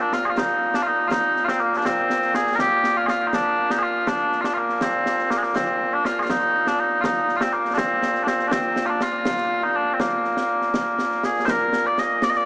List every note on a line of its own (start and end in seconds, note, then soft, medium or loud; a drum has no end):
0.00 12.45 A#2 medium
0.00 1.60 A#3 medium
0.00 0.13 D4 medium
0.12 0.25 F4 medium
0.12 snare medium
0.25 0.30 G#4 medium
0.30 0.38 F4 medium
0.37 0.75 D#4 loud
0.37 concert bass drum medium
0.37 snare loud
0.74 0.82 D4 medium
0.74 snare medium
0.82 0.87 F4 medium
0.87 1.08 D#4 medium
1.08 1.44 D#4 loud
1.08 1.12 F4 loud
1.08 concert bass drum medium
1.08 snare medium
1.36 snare soft
1.44 1.60 C4 medium
1.44 1.48 F4 medium
1.48 snare medium
1.60 1.77 A#3 medium
1.73 1.85 D4 medium
1.73 snare soft
1.85 2.35 C4 loud
1.85 concert bass drum medium
1.85 snare medium
2.10 snare medium
2.22 snare soft
2.34 2.55 G#4 loud
2.34 snare medium
2.47 snare soft
2.55 2.60 A#4 loud
2.55 concert bass drum medium
2.55 snare medium
2.60 2.97 G4 loud
2.84 snare medium
2.97 3.06 F4 medium
3.06 3.27 F4 loud
3.06 3.10 G#4 loud
3.06 snare medium
3.27 3.34 D#4 medium
3.33 3.71 D4 loud
3.33 concert bass drum soft
3.33 snare medium
3.70 3.78 D#4 loud
3.70 snare medium
3.78 3.83 G#4 medium
3.83 4.07 F4 medium
4.07 4.41 D4 medium
4.07 concert bass drum medium
4.07 snare medium
4.32 snare soft
4.41 4.54 D4 medium
4.41 4.45 F4 medium
4.41 snare medium
4.54 4.82 A#3 medium
4.54 4.57 F4 medium
4.69 snare soft
4.81 5.31 C4 medium
4.81 concert bass drum medium
4.81 snare loud
5.06 snare medium
5.19 snare soft
5.31 5.37 A#3 medium
5.31 snare medium
5.37 5.43 G#3 medium
5.43 5.56 A#3 medium
5.43 snare soft
5.55 5.94 C4 medium
5.55 concert bass drum medium
5.55 snare loud
5.94 6.05 D4 medium
6.05 6.19 F4 medium
6.05 snare medium
6.19 6.30 F4 medium
6.19 6.23 G#4 medium
6.30 6.67 D#4 loud
6.30 concert bass drum medium
6.30 snare loud
6.67 6.79 D4 medium
6.67 snare medium
6.79 7.01 D#4 medium
7.01 7.36 D#4 medium
7.01 7.04 F4 medium
7.01 concert bass drum medium
7.01 snare loud
7.29 snare soft
7.36 7.41 F4 medium
7.41 7.53 C4 medium
7.41 snare medium
7.53 7.74 A#3 medium
7.65 snare soft
7.74 8.23 C4 loud
7.74 7.78 D4 loud
7.74 concert bass drum medium
7.74 snare loud
8.02 snare medium
8.15 snare soft
8.23 8.48 C4 medium
8.23 8.27 D4 medium
8.23 snare medium
8.39 snare soft
8.48 8.86 C4 medium
8.48 8.52 D4 medium
8.48 concert bass drum medium
8.48 snare loud
8.76 snare medium
8.86 9.02 D4 medium
8.86 8.89 F4 medium
9.01 9.63 F4 loud
9.01 snare medium
9.25 concert bass drum medium
9.25 snare loud
9.38 snare soft
9.63 9.75 D#4 medium
9.75 9.93 D4 medium
9.93 10.00 C4 medium
10.00 11.25 A#3 medium
10.00 concert bass drum medium
10.00 snare loud
10.24 snare soft
10.37 snare medium
10.61 snare soft
10.74 concert bass drum soft
10.74 snare loud
10.99 snare medium
11.11 snare soft
11.23 11.45 G#4 medium
11.23 snare medium
11.36 snare soft
11.45 11.50 C5 loud
11.45 concert bass drum medium
11.45 snare loud
11.50 11.87 A#4 loud
11.73 snare medium
11.87 11.99 D5 medium
11.98 12.24 D#5 loud
11.98 snare medium
12.22 12.30 D5 loud
12.22 snare loud
12.30 12.37 D#5 medium
12.34 12.45 D5 loud
12.34 snare soft